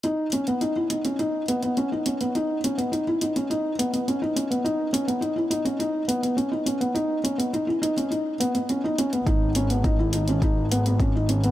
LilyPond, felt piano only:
\new Staff \with { instrumentName = "Felt piano" } { \time 4/4 \key b \major \tempo 4 = 104 dis'8 cis'16 b16 dis'16 e'16 dis'16 cis'16 dis'8 b16 b16 cis'16 dis'16 cis'16 b16 | dis'8 cis'16 b16 dis'16 e'16 dis'16 cis'16 dis'8 b16 b16 cis'16 dis'16 cis'16 b16 | dis'8 cis'16 b16 dis'16 e'16 dis'16 cis'16 dis'8 b16 b16 cis'16 dis'16 cis'16 b16 | dis'8 cis'16 b16 dis'16 e'16 dis'16 cis'16 dis'8 b16 b16 cis'16 dis'16 cis'16 b16 |
dis'8 cis'16 b16 dis'16 e'16 dis'16 cis'16 dis'8 b16 b16 cis'16 dis'16 cis'16 b16 | }